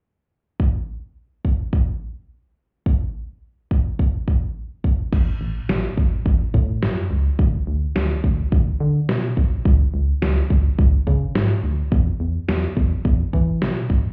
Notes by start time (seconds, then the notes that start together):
0.60 kick
1.45 kick
1.73 kick
2.86 kick
3.71 kick
3.99 kick
4.28 kick
4.84 kick
5.13 A1, kick, crash
5.41 A1
5.69 A1, snare
5.97 A1, kick
6.26 A1, kick
6.54 A2, kick
6.82 F#2, snare
7.11 C#2
7.39 D2, kick
7.67 D2
7.96 D2, snare
8.24 D2, kick
8.52 D2, kick
8.80 D3
9.09 B2, snare
9.37 B1, kick
9.65 C#2, kick
9.94 C#2
10.22 C#2, snare
10.50 C#2, kick
10.79 C#2, kick
11.07 C#3, kick
11.35 G#2, snare
11.63 D2
11.92 E2, kick
12.20 E2
12.48 E2, snare
12.77 E2, kick
13.05 E2, kick
13.33 E3, kick
13.62 B2, snare
13.90 G#1, kick